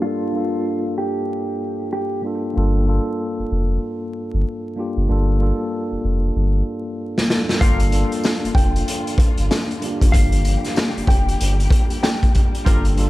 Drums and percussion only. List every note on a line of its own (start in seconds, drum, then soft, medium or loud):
7.18 snare medium
7.30 snare loud
7.49 snare medium
7.61 kick loud
7.61 closed hi-hat loud
7.80 closed hi-hat medium
7.92 closed hi-hat medium
8.12 closed hi-hat soft
8.23 snare loud
8.23 tambourine medium
8.45 closed hi-hat medium
8.55 kick loud
8.55 closed hi-hat medium
8.76 closed hi-hat medium
8.88 closed hi-hat loud
9.07 closed hi-hat medium
9.18 kick loud
9.18 closed hi-hat medium
9.38 closed hi-hat medium
9.51 snare loud
9.51 tambourine medium
9.71 closed hi-hat soft
9.82 closed hi-hat medium
10.02 kick medium
10.02 closed hi-hat medium
10.14 kick loud
10.14 closed hi-hat loud
10.32 closed hi-hat medium
10.45 closed hi-hat medium
10.65 snare soft
10.65 closed hi-hat medium
10.76 snare loud
10.76 tambourine medium
10.98 closed hi-hat medium
11.07 kick loud
11.07 closed hi-hat medium
11.29 closed hi-hat medium
11.41 closed hi-hat loud
11.60 closed hi-hat medium
11.70 kick loud
11.70 closed hi-hat medium
11.90 closed hi-hat medium
12.03 snare loud
12.03 tambourine medium
12.23 kick loud
12.23 closed hi-hat soft
12.35 kick medium
12.35 closed hi-hat medium
12.55 closed hi-hat medium
12.66 kick loud
12.66 closed hi-hat loud
12.85 closed hi-hat medium
12.97 closed hi-hat medium